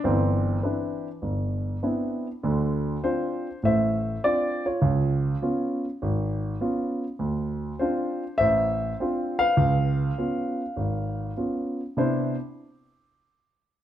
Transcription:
0.04 G1 E3 C4
0.63 C4 D4 E4 B4
1.22 G1
1.83 B3 C4 D4 E4
2.43 D2 D3
3.04 C4 D4 F4 C5
3.63 A1 A2 C5 E5
4.24 C4 D4 F4 D5
4.66 F4 C#5
4.82 C#2
5.42 B3 C#4 F4
6.02 G#1
6.61 B3 C#4 F4
7.19 D2
7.79 C4 D4 F4 C5
8.38 A1 C5 E5
9.00 C4 D4 F4
9.39 B4 F5
9.57 C#2
10.18 B3 C#4 F4
10.76 G#1
11.37 B3 C#4 F4
11.97 C3 B3 D4 E4 C5

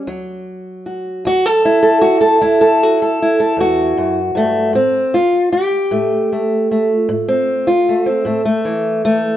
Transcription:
0.07 D2 F#3
0.86 F#4
1.25 D2 F#4
1.46 A4
1.65 E4
1.83 A4
2.01 F#4
2.21 A4
2.41 D2 E4
2.61 A4
2.83 F#4
3.02 A4
3.22 E4
3.40 A4
3.57 E2 F#4
3.97 F#2
4.35 G2 A3
4.73 A2 C4
5.14 F4
5.52 G4
5.91 A2 A3
6.33 A3
6.71 A3
6.96 F4
7.09 A2
7.28 C4
7.67 F4
7.89 A3
8.06 C4
8.25 A2 A3
8.45 A3
8.65 E3
9.05 A3

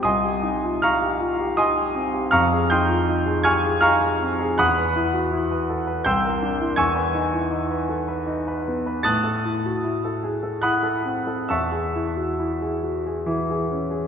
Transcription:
0.03 C2 D#5 G#5 C6 D#6
0.24 G4
0.43 D#4
0.63 F4
0.82 D#4 F5 A#5 C#6 F6
1.01 G4
1.21 F4
1.40 G4
1.57 D#4 D#5 G#5 C6 D#6
1.78 G4
1.95 C4
2.14 G4
2.31 F2 F5 A#5 C#6 F6
2.52 G#4
2.70 D#4 G5 C6 D#6 G6
2.89 F4
3.08 D#4
3.25 G#4
3.43 G4 G#5 C#6 F6 G#6
3.64 G#4
3.81 D#4 F5 A#5 C#6 F6
4.01 G#4
4.21 C4
4.40 G#4
4.58 E2 F#5 B5 D#6 F#6
4.78 B4
4.96 E4
5.13 F#4
5.32 E4
5.51 B4
5.69 A4
5.87 B4
6.04 C2 G5 C6 E6 G6
6.25 A#4
6.42 D4
6.61 E4
6.76 E2 G#5 C#6 E6 G#6
6.95 B4
7.14 D#4
7.33 E4
7.51 D#4
7.71 B4
7.89 A4
8.08 B4
8.27 D#4
8.48 B4
8.68 B3
8.86 B4
9.03 A2 A5 D#6 F#6 A6
9.24 A4
9.45 E4
9.65 F#4
9.84 E4
10.04 A4
10.23 G#4
10.43 A4
10.62 E4 F#5 B5 D#6 F#6
10.83 A4
11.05 C4
11.27 A4
11.49 E2 E5 A5 C#6 E6
11.72 G#4
11.95 E4
12.16 F#4
12.39 E4
12.62 G#4
12.83 F#4
13.06 G#4
13.26 E3 E4
13.50 G#4
13.71 C#4
13.91 G#4

